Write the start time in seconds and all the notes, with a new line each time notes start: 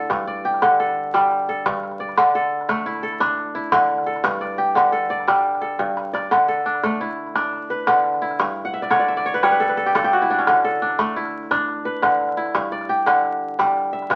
Already playing: D3 A3 D4 E4 A4
0.10 G2, calabash thump, calabash click
0.20 calabash click
0.27 D5
0.45 G4
0.54 calabash click
0.62 D3, calabash thump, calabash click
0.80 A4, calabash click
0.88 calabash click
1.14 G3, calabash thump, calabash click
1.32 calabash click
1.49 A4
1.66 G2, calabash thump, calabash click
1.83 calabash click
1.91 calabash click
2.00 D5
2.09 calabash click
2.17 D3, calabash thump, calabash click
2.26 calabash click
2.35 A4
2.61 calabash click
2.69 A3, calabash thump, calabash click
2.86 E4, calabash click
2.95 calabash click
3.03 A4
3.13 calabash click
3.20 D4, calabash thump, calabash click
3.38 calabash click
3.55 E4
3.72 D3, calabash thump, calabash click
3.89 calabash click
3.98 calabash click
4.06 A4
4.16 calabash click
4.24 G2, calabash thump, calabash click
4.41 D5, calabash click
4.58 G4
4.75 D3, calabash thump, calabash click
4.92 A4, calabash click
5.10 D5
5.20 calabash click
5.28 G3, calabash thump, calabash click
5.55 calabash click
5.61 A4
5.79 G2, calabash thump
5.97 calabash click
6.13 D5, calabash click
6.31 D3, calabash thump, calabash click
6.41 calabash click
6.48 A4
6.66 D4
6.75 calabash click
6.83 A3, calabash thump, calabash click
7.01 E4
7.10 calabash click
7.27 calabash click
7.35 D4, calabash thump, calabash click
7.53 calabash click
7.70 B4
7.87 D3, calabash thump, calabash click
8.04 calabash click
8.13 calabash click
8.22 E4
8.31 calabash click
8.39 G2, calabash thump, calabash click
8.49 calabash click
8.65 F#5
8.74 E5
8.82 D5, calabash click
8.90 D3 C#5, calabash thump, calabash click
8.99 D5
9.08 E5, calabash click
9.17 D5, calabash click
9.26 C#5
9.34 B4, calabash click
9.43 G3 C#5, calabash thump, calabash click
9.51 B4
9.60 A4, calabash click
9.69 B4
9.77 A4
9.86 G4
9.95 G2 A4, calabash thump, calabash click
10.04 G4
10.12 F#4, calabash click
10.21 E4, calabash click
10.30 D4
10.38 C#4, calabash click
10.47 D3, calabash thump, calabash click
10.56 calabash click
10.64 A4
10.82 D4
10.90 calabash click
10.99 A3, calabash thump, calabash click
11.16 E4
11.25 calabash click
11.43 calabash click
11.51 D4, calabash thump, calabash click
11.68 calabash click
11.85 B4
12.02 D3, calabash thump, calabash click
12.21 calabash click
12.29 calabash click
12.37 E4
12.46 calabash click
12.55 G2, calabash thump, calabash click
12.72 D5, calabash click
12.81 calabash click
12.89 G4
13.06 D3, calabash thump, calabash click
13.25 calabash click
13.59 G3, calabash thump, calabash click
13.68 calabash click
13.77 calabash click
13.93 E5
14.02 calabash click
14.10 G2, calabash thump, calabash click